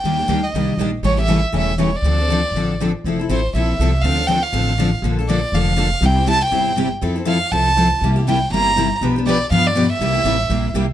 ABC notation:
X:1
M:4/4
L:1/8
Q:"Swing" 1/4=241
K:Dm
V:1 name="Violin"
g3 _e3 z2 | ^c e2 z e2 c d- | d6 z2 | [K:F] z2 c2 e4 |
f2 g f4 z | z2 d2 f4 | g2 a g4 z | z2 f2 a4 |
z2 g2 b4 | z2 d2 f d2 e- | e6 z2 |]
V:2 name="Steel-string acoustic guitar"
[_E,G,B,DG] [B,DG] [E,G,B,DG] z [E,G,B,DG] z [E,G,B,DG] z | [^C,E,A,^CG] [A,CG] [C,E,A,CG] z [C,E,A,CG] z [C,E,A,CG] z | [D,F,CDA] [CDA] [D,F,CDA] z [D,F,CDA] z [D,F,CDA] z | [K:F] [F,CEA] [CEA] [F,CEA] z [F,CEA] z [F,CEA] z |
[D,F,CDA] [CDA] [D,F,CDA] z [D,F,CDA] z [D,F,CDA] z | [D,F,B,DA] [B,DA] [D,F,B,DA] z [D,F,B,DA] z [D,F,B,DA] z | [C,G,CEG] [CEG] [C,G,CEG] z [C,G,CEG] z [C,G,CEG] z | [F,CEA] [CEA] [F,CEA] z [F,CEA] z [F,CEA] z |
[C,G,B,EG] [B,EG] [C,G,B,EG] z [C,G,B,EG] z [C,G,B,EG] z | [=B,,F,=B,DG=B] [B,DGB] [B,,F,B,DGB] z [B,,F,B,DGB] z [B,,F,B,DGB] z | [C,G,B,EG] [B,EG] [C,G,B,EG] z [C,G,B,EG] z [C,G,B,EG] z |]
V:3 name="Steel-string acoustic guitar"
[_E,G,B,DG] z [E,G,B,DG] z [E,G,B,DG] z [E,G,B,DG] z | [E,G,^CEA] z [E,G,CEA] z [E,G,CEA] z [E,G,CEA] z | [D,F,CDA] z [D,F,CDA] z [D,F,CDA] z [D,F,CDA] z | [K:F] [F,CEA] z [F,CEA] z [F,CEA] z [F,CEA] z |
[D,F,CDA] z [D,F,CDA] z [D,F,CDA] z [D,F,CDA] z | [D,F,B,DA] z [D,F,B,DA] z [D,F,B,DA] z [D,F,B,DA] z | [C,G,CEG] z [C,G,CEG] z [C,G,CEG] z [C,G,CEG] z | [F,CEA] z [F,CEA] z [F,CEA] z [F,CEA] z |
[C,G,B,EG] z [C,G,B,EG] z [C,G,B,EG] z [C,G,B,EG] z | [=B,,F,=B,DG=B] z [B,,F,B,DGB] z [B,,F,B,DGB] z [B,,F,B,DGB] z | [C,G,B,EG] z [C,G,B,EG] z [C,G,B,EG] z [C,G,B,EG] z |]
V:4 name="Upright bass" clef=bass
_E,,2 D,,2 C,,2 B,,,2 | A,,,4 E,,,4 | D,,4 A,,,4 | [K:F] F,,,2 A,,,2 B,,,2 C,,2 |
D,,4 A,,,4 | B,,,4 F,,,4 | C,,4 G,,,4 | F,,4 C,,4 |
C,,4 G,,,4 | =B,,,4 G,,4 | C,,2 A,,,2 B,,,2 C,,2 |]